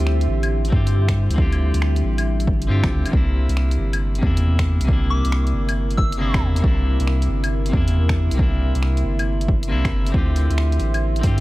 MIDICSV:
0, 0, Header, 1, 6, 480
1, 0, Start_track
1, 0, Tempo, 437956
1, 1514, Time_signature, 4, 2, 24, 8
1, 12498, End_track
2, 0, Start_track
2, 0, Title_t, "Synth bell"
2, 0, Program_c, 0, 98
2, 5593, Note_on_c, 0, 86, 94
2, 5849, Note_off_c, 0, 86, 0
2, 6548, Note_on_c, 0, 88, 84
2, 6948, Note_off_c, 0, 88, 0
2, 12498, End_track
3, 0, Start_track
3, 0, Title_t, "Ambient pad"
3, 0, Program_c, 1, 92
3, 0, Note_on_c, 1, 67, 80
3, 0, Note_on_c, 1, 76, 74
3, 0, Note_on_c, 1, 84, 88
3, 3388, Note_off_c, 1, 76, 0
3, 3389, Note_off_c, 1, 67, 0
3, 3390, Note_off_c, 1, 84, 0
3, 3422, Note_on_c, 1, 86, 89
3, 3423, Note_on_c, 1, 76, 76
3, 3428, Note_on_c, 1, 70, 80
3, 7229, Note_off_c, 1, 86, 0
3, 7270, Note_on_c, 1, 84, 89
3, 11067, Note_off_c, 1, 70, 0
3, 11109, Note_on_c, 1, 67, 80
3, 12498, Note_off_c, 1, 67, 0
3, 12498, Note_off_c, 1, 76, 0
3, 12498, Note_off_c, 1, 84, 0
3, 12498, End_track
4, 0, Start_track
4, 0, Title_t, "Clean electric guitar"
4, 0, Program_c, 2, 27
4, 0, Note_on_c, 2, 50, 77
4, 0, Note_on_c, 2, 60, 68
4, 0, Note_on_c, 2, 65, 66
4, 0, Note_on_c, 2, 67, 82
4, 733, Note_off_c, 2, 50, 0
4, 746, Note_on_c, 2, 50, 73
4, 753, Note_off_c, 2, 60, 0
4, 766, Note_on_c, 2, 60, 65
4, 784, Note_off_c, 2, 65, 0
4, 786, Note_off_c, 2, 67, 0
4, 790, Note_on_c, 2, 64, 67
4, 811, Note_on_c, 2, 65, 69
4, 829, Note_off_c, 2, 64, 0
4, 834, Note_on_c, 2, 67, 80
4, 1454, Note_off_c, 2, 50, 0
4, 1467, Note_on_c, 2, 50, 75
4, 1474, Note_off_c, 2, 60, 0
4, 1487, Note_on_c, 2, 60, 69
4, 1502, Note_off_c, 2, 65, 0
4, 1507, Note_off_c, 2, 67, 0
4, 1511, Note_on_c, 2, 64, 69
4, 1532, Note_on_c, 2, 65, 69
4, 1549, Note_off_c, 2, 64, 0
4, 1553, Note_on_c, 2, 67, 84
4, 2910, Note_off_c, 2, 50, 0
4, 2921, Note_off_c, 2, 60, 0
4, 2929, Note_on_c, 2, 50, 92
4, 2940, Note_on_c, 2, 60, 84
4, 2943, Note_off_c, 2, 65, 0
4, 2950, Note_on_c, 2, 64, 81
4, 2954, Note_off_c, 2, 67, 0
4, 2959, Note_off_c, 2, 64, 0
4, 2963, Note_on_c, 2, 65, 84
4, 2973, Note_on_c, 2, 67, 97
4, 3388, Note_on_c, 2, 48, 70
4, 3402, Note_off_c, 2, 50, 0
4, 3407, Note_off_c, 2, 60, 0
4, 3417, Note_on_c, 2, 58, 65
4, 3418, Note_off_c, 2, 65, 0
4, 3424, Note_off_c, 2, 67, 0
4, 3446, Note_on_c, 2, 62, 67
4, 3474, Note_on_c, 2, 64, 83
4, 4574, Note_off_c, 2, 48, 0
4, 4588, Note_on_c, 2, 48, 76
4, 4605, Note_off_c, 2, 58, 0
4, 4616, Note_on_c, 2, 58, 65
4, 4620, Note_off_c, 2, 62, 0
4, 4634, Note_off_c, 2, 64, 0
4, 4646, Note_on_c, 2, 62, 67
4, 4675, Note_on_c, 2, 64, 76
4, 5298, Note_off_c, 2, 48, 0
4, 5311, Note_on_c, 2, 48, 78
4, 5325, Note_off_c, 2, 58, 0
4, 5340, Note_off_c, 2, 62, 0
4, 5340, Note_on_c, 2, 58, 70
4, 5355, Note_off_c, 2, 64, 0
4, 5370, Note_on_c, 2, 62, 70
4, 5400, Note_on_c, 2, 64, 82
4, 6752, Note_off_c, 2, 48, 0
4, 6767, Note_off_c, 2, 58, 0
4, 6770, Note_on_c, 2, 48, 89
4, 6782, Note_off_c, 2, 62, 0
4, 6784, Note_on_c, 2, 58, 85
4, 6797, Note_off_c, 2, 64, 0
4, 6800, Note_on_c, 2, 62, 80
4, 6814, Note_on_c, 2, 64, 98
4, 7216, Note_off_c, 2, 48, 0
4, 7229, Note_on_c, 2, 48, 73
4, 7243, Note_off_c, 2, 58, 0
4, 7257, Note_off_c, 2, 62, 0
4, 7257, Note_on_c, 2, 58, 69
4, 7264, Note_off_c, 2, 64, 0
4, 7286, Note_on_c, 2, 62, 69
4, 7316, Note_on_c, 2, 64, 81
4, 8417, Note_off_c, 2, 48, 0
4, 8430, Note_on_c, 2, 48, 71
4, 8445, Note_off_c, 2, 58, 0
4, 8459, Note_on_c, 2, 58, 69
4, 8460, Note_off_c, 2, 62, 0
4, 8475, Note_off_c, 2, 64, 0
4, 8488, Note_on_c, 2, 62, 70
4, 8516, Note_on_c, 2, 64, 80
4, 9135, Note_off_c, 2, 48, 0
4, 9148, Note_on_c, 2, 48, 79
4, 9163, Note_off_c, 2, 58, 0
4, 9177, Note_on_c, 2, 58, 69
4, 9181, Note_off_c, 2, 62, 0
4, 9195, Note_off_c, 2, 64, 0
4, 9207, Note_on_c, 2, 62, 71
4, 9236, Note_on_c, 2, 64, 85
4, 10591, Note_off_c, 2, 48, 0
4, 10605, Note_off_c, 2, 58, 0
4, 10610, Note_on_c, 2, 48, 86
4, 10620, Note_off_c, 2, 62, 0
4, 10623, Note_on_c, 2, 58, 80
4, 10635, Note_off_c, 2, 64, 0
4, 10640, Note_on_c, 2, 62, 81
4, 10655, Note_on_c, 2, 64, 103
4, 11068, Note_on_c, 2, 50, 74
4, 11082, Note_off_c, 2, 48, 0
4, 11086, Note_off_c, 2, 58, 0
4, 11090, Note_on_c, 2, 60, 67
4, 11097, Note_off_c, 2, 62, 0
4, 11098, Note_off_c, 2, 64, 0
4, 11111, Note_on_c, 2, 64, 67
4, 11134, Note_on_c, 2, 65, 66
4, 11151, Note_off_c, 2, 64, 0
4, 11156, Note_on_c, 2, 67, 81
4, 12255, Note_off_c, 2, 50, 0
4, 12268, Note_on_c, 2, 50, 74
4, 12276, Note_off_c, 2, 60, 0
4, 12289, Note_on_c, 2, 60, 67
4, 12304, Note_off_c, 2, 65, 0
4, 12308, Note_off_c, 2, 67, 0
4, 12312, Note_on_c, 2, 64, 66
4, 12335, Note_on_c, 2, 65, 65
4, 12352, Note_off_c, 2, 64, 0
4, 12356, Note_on_c, 2, 67, 77
4, 12498, Note_off_c, 2, 50, 0
4, 12498, Note_off_c, 2, 60, 0
4, 12498, Note_off_c, 2, 65, 0
4, 12498, Note_off_c, 2, 67, 0
4, 12498, End_track
5, 0, Start_track
5, 0, Title_t, "Sub bass"
5, 0, Program_c, 3, 38
5, 0, Note_on_c, 3, 38, 97
5, 302, Note_off_c, 3, 38, 0
5, 310, Note_on_c, 3, 33, 77
5, 781, Note_off_c, 3, 33, 0
5, 793, Note_on_c, 3, 43, 102
5, 1411, Note_off_c, 3, 43, 0
5, 1424, Note_on_c, 3, 38, 85
5, 1888, Note_off_c, 3, 38, 0
5, 1907, Note_on_c, 3, 38, 98
5, 2220, Note_off_c, 3, 38, 0
5, 2229, Note_on_c, 3, 33, 75
5, 2701, Note_off_c, 3, 33, 0
5, 2712, Note_on_c, 3, 33, 89
5, 2945, Note_off_c, 3, 33, 0
5, 2951, Note_on_c, 3, 43, 103
5, 3098, Note_off_c, 3, 43, 0
5, 3109, Note_on_c, 3, 33, 89
5, 3187, Note_on_c, 3, 38, 84
5, 3204, Note_off_c, 3, 33, 0
5, 3336, Note_off_c, 3, 38, 0
5, 3432, Note_on_c, 3, 36, 101
5, 3810, Note_off_c, 3, 36, 0
5, 3824, Note_on_c, 3, 36, 96
5, 4139, Note_off_c, 3, 36, 0
5, 4149, Note_on_c, 3, 31, 80
5, 4620, Note_off_c, 3, 31, 0
5, 4631, Note_on_c, 3, 40, 106
5, 5250, Note_off_c, 3, 40, 0
5, 5267, Note_on_c, 3, 36, 89
5, 5729, Note_off_c, 3, 36, 0
5, 5751, Note_on_c, 3, 36, 98
5, 6063, Note_off_c, 3, 36, 0
5, 6071, Note_on_c, 3, 31, 75
5, 6541, Note_off_c, 3, 31, 0
5, 6555, Note_on_c, 3, 31, 90
5, 7024, Note_off_c, 3, 31, 0
5, 7031, Note_on_c, 3, 40, 83
5, 7259, Note_off_c, 3, 40, 0
5, 7274, Note_on_c, 3, 36, 101
5, 7651, Note_off_c, 3, 36, 0
5, 7671, Note_on_c, 3, 36, 97
5, 7983, Note_off_c, 3, 36, 0
5, 7993, Note_on_c, 3, 31, 81
5, 8463, Note_off_c, 3, 31, 0
5, 8474, Note_on_c, 3, 40, 106
5, 9092, Note_off_c, 3, 40, 0
5, 9111, Note_on_c, 3, 36, 88
5, 9571, Note_off_c, 3, 36, 0
5, 9592, Note_on_c, 3, 36, 95
5, 9903, Note_off_c, 3, 36, 0
5, 9915, Note_on_c, 3, 31, 78
5, 10383, Note_off_c, 3, 31, 0
5, 10395, Note_on_c, 3, 31, 89
5, 10634, Note_on_c, 3, 36, 79
5, 10651, Note_off_c, 3, 31, 0
5, 10861, Note_off_c, 3, 36, 0
5, 10874, Note_on_c, 3, 31, 86
5, 11100, Note_off_c, 3, 31, 0
5, 11114, Note_on_c, 3, 38, 102
5, 11492, Note_off_c, 3, 38, 0
5, 11510, Note_on_c, 3, 38, 99
5, 11822, Note_off_c, 3, 38, 0
5, 11833, Note_on_c, 3, 33, 80
5, 12302, Note_off_c, 3, 33, 0
5, 12317, Note_on_c, 3, 43, 103
5, 12498, Note_off_c, 3, 43, 0
5, 12498, End_track
6, 0, Start_track
6, 0, Title_t, "Drums"
6, 72, Note_on_c, 9, 26, 96
6, 181, Note_off_c, 9, 26, 0
6, 231, Note_on_c, 9, 42, 42
6, 341, Note_off_c, 9, 42, 0
6, 472, Note_on_c, 9, 42, 53
6, 472, Note_on_c, 9, 75, 64
6, 581, Note_off_c, 9, 42, 0
6, 581, Note_off_c, 9, 75, 0
6, 710, Note_on_c, 9, 42, 43
6, 793, Note_on_c, 9, 36, 95
6, 820, Note_off_c, 9, 42, 0
6, 903, Note_off_c, 9, 36, 0
6, 952, Note_on_c, 9, 42, 53
6, 1061, Note_off_c, 9, 42, 0
6, 1189, Note_on_c, 9, 26, 100
6, 1189, Note_on_c, 9, 42, 30
6, 1191, Note_on_c, 9, 36, 58
6, 1299, Note_off_c, 9, 26, 0
6, 1299, Note_off_c, 9, 42, 0
6, 1301, Note_off_c, 9, 36, 0
6, 1431, Note_on_c, 9, 42, 56
6, 1512, Note_on_c, 9, 36, 111
6, 1540, Note_off_c, 9, 42, 0
6, 1622, Note_off_c, 9, 36, 0
6, 1670, Note_on_c, 9, 42, 32
6, 1670, Note_on_c, 9, 75, 39
6, 1780, Note_off_c, 9, 42, 0
6, 1780, Note_off_c, 9, 75, 0
6, 1908, Note_on_c, 9, 42, 58
6, 1993, Note_on_c, 9, 26, 99
6, 2018, Note_off_c, 9, 42, 0
6, 2102, Note_off_c, 9, 26, 0
6, 2151, Note_on_c, 9, 42, 45
6, 2260, Note_off_c, 9, 42, 0
6, 2391, Note_on_c, 9, 42, 56
6, 2391, Note_on_c, 9, 75, 66
6, 2501, Note_off_c, 9, 42, 0
6, 2501, Note_off_c, 9, 75, 0
6, 2631, Note_on_c, 9, 42, 45
6, 2712, Note_on_c, 9, 36, 99
6, 2740, Note_off_c, 9, 42, 0
6, 2822, Note_off_c, 9, 36, 0
6, 2868, Note_on_c, 9, 42, 54
6, 2978, Note_off_c, 9, 42, 0
6, 3107, Note_on_c, 9, 26, 101
6, 3107, Note_on_c, 9, 42, 30
6, 3110, Note_on_c, 9, 36, 102
6, 3217, Note_off_c, 9, 26, 0
6, 3217, Note_off_c, 9, 42, 0
6, 3220, Note_off_c, 9, 36, 0
6, 3349, Note_on_c, 9, 42, 59
6, 3349, Note_on_c, 9, 75, 40
6, 3433, Note_on_c, 9, 36, 118
6, 3458, Note_off_c, 9, 42, 0
6, 3458, Note_off_c, 9, 75, 0
6, 3542, Note_off_c, 9, 36, 0
6, 3829, Note_on_c, 9, 42, 58
6, 3910, Note_on_c, 9, 26, 99
6, 3938, Note_off_c, 9, 42, 0
6, 4020, Note_off_c, 9, 26, 0
6, 4069, Note_on_c, 9, 42, 44
6, 4179, Note_off_c, 9, 42, 0
6, 4310, Note_on_c, 9, 42, 57
6, 4310, Note_on_c, 9, 75, 64
6, 4419, Note_off_c, 9, 42, 0
6, 4419, Note_off_c, 9, 75, 0
6, 4551, Note_on_c, 9, 42, 46
6, 4633, Note_on_c, 9, 36, 97
6, 4660, Note_off_c, 9, 42, 0
6, 4742, Note_off_c, 9, 36, 0
6, 4790, Note_on_c, 9, 42, 58
6, 4900, Note_off_c, 9, 42, 0
6, 5031, Note_on_c, 9, 26, 109
6, 5031, Note_on_c, 9, 42, 32
6, 5032, Note_on_c, 9, 36, 60
6, 5140, Note_off_c, 9, 26, 0
6, 5140, Note_off_c, 9, 42, 0
6, 5141, Note_off_c, 9, 36, 0
6, 5269, Note_on_c, 9, 42, 61
6, 5354, Note_on_c, 9, 36, 126
6, 5379, Note_off_c, 9, 42, 0
6, 5463, Note_off_c, 9, 36, 0
6, 5751, Note_on_c, 9, 42, 59
6, 5833, Note_on_c, 9, 26, 104
6, 5860, Note_off_c, 9, 42, 0
6, 5943, Note_off_c, 9, 26, 0
6, 5992, Note_on_c, 9, 42, 45
6, 6102, Note_off_c, 9, 42, 0
6, 6232, Note_on_c, 9, 42, 57
6, 6232, Note_on_c, 9, 75, 65
6, 6341, Note_off_c, 9, 42, 0
6, 6341, Note_off_c, 9, 75, 0
6, 6472, Note_on_c, 9, 42, 46
6, 6555, Note_on_c, 9, 36, 106
6, 6582, Note_off_c, 9, 42, 0
6, 6664, Note_off_c, 9, 36, 0
6, 6712, Note_on_c, 9, 42, 57
6, 6822, Note_off_c, 9, 42, 0
6, 6951, Note_on_c, 9, 26, 113
6, 6951, Note_on_c, 9, 42, 34
6, 6952, Note_on_c, 9, 36, 112
6, 7060, Note_off_c, 9, 26, 0
6, 7060, Note_off_c, 9, 42, 0
6, 7062, Note_off_c, 9, 36, 0
6, 7193, Note_on_c, 9, 42, 62
6, 7275, Note_on_c, 9, 36, 119
6, 7302, Note_off_c, 9, 42, 0
6, 7385, Note_off_c, 9, 36, 0
6, 7671, Note_on_c, 9, 42, 57
6, 7753, Note_on_c, 9, 26, 106
6, 7780, Note_off_c, 9, 42, 0
6, 7863, Note_off_c, 9, 26, 0
6, 7913, Note_on_c, 9, 42, 45
6, 8023, Note_off_c, 9, 42, 0
6, 8151, Note_on_c, 9, 42, 54
6, 8151, Note_on_c, 9, 75, 60
6, 8260, Note_off_c, 9, 42, 0
6, 8260, Note_off_c, 9, 75, 0
6, 8393, Note_on_c, 9, 42, 47
6, 8476, Note_on_c, 9, 36, 110
6, 8502, Note_off_c, 9, 42, 0
6, 8585, Note_off_c, 9, 36, 0
6, 8633, Note_on_c, 9, 42, 57
6, 8742, Note_off_c, 9, 42, 0
6, 8869, Note_on_c, 9, 26, 111
6, 8869, Note_on_c, 9, 42, 33
6, 8874, Note_on_c, 9, 36, 64
6, 8979, Note_off_c, 9, 26, 0
6, 8979, Note_off_c, 9, 42, 0
6, 8983, Note_off_c, 9, 36, 0
6, 9111, Note_on_c, 9, 42, 60
6, 9196, Note_on_c, 9, 36, 119
6, 9221, Note_off_c, 9, 42, 0
6, 9305, Note_off_c, 9, 36, 0
6, 9591, Note_on_c, 9, 42, 55
6, 9673, Note_on_c, 9, 26, 102
6, 9701, Note_off_c, 9, 42, 0
6, 9782, Note_off_c, 9, 26, 0
6, 9833, Note_on_c, 9, 42, 42
6, 9942, Note_off_c, 9, 42, 0
6, 10075, Note_on_c, 9, 42, 52
6, 10075, Note_on_c, 9, 75, 62
6, 10184, Note_off_c, 9, 42, 0
6, 10184, Note_off_c, 9, 75, 0
6, 10314, Note_on_c, 9, 42, 44
6, 10395, Note_on_c, 9, 36, 108
6, 10424, Note_off_c, 9, 42, 0
6, 10505, Note_off_c, 9, 36, 0
6, 10553, Note_on_c, 9, 42, 53
6, 10663, Note_off_c, 9, 42, 0
6, 10793, Note_on_c, 9, 36, 112
6, 10795, Note_on_c, 9, 26, 108
6, 10795, Note_on_c, 9, 42, 31
6, 10902, Note_off_c, 9, 36, 0
6, 10904, Note_off_c, 9, 26, 0
6, 10904, Note_off_c, 9, 42, 0
6, 11031, Note_on_c, 9, 42, 57
6, 11115, Note_on_c, 9, 36, 121
6, 11141, Note_off_c, 9, 42, 0
6, 11224, Note_off_c, 9, 36, 0
6, 11354, Note_on_c, 9, 46, 73
6, 11463, Note_off_c, 9, 46, 0
6, 11514, Note_on_c, 9, 42, 53
6, 11594, Note_on_c, 9, 26, 100
6, 11623, Note_off_c, 9, 42, 0
6, 11703, Note_off_c, 9, 26, 0
6, 11753, Note_on_c, 9, 42, 42
6, 11832, Note_on_c, 9, 46, 64
6, 11862, Note_off_c, 9, 42, 0
6, 11941, Note_off_c, 9, 46, 0
6, 11992, Note_on_c, 9, 42, 50
6, 11992, Note_on_c, 9, 75, 62
6, 12102, Note_off_c, 9, 42, 0
6, 12102, Note_off_c, 9, 75, 0
6, 12232, Note_on_c, 9, 42, 45
6, 12312, Note_on_c, 9, 46, 72
6, 12315, Note_on_c, 9, 36, 98
6, 12341, Note_off_c, 9, 42, 0
6, 12422, Note_off_c, 9, 46, 0
6, 12425, Note_off_c, 9, 36, 0
6, 12498, End_track
0, 0, End_of_file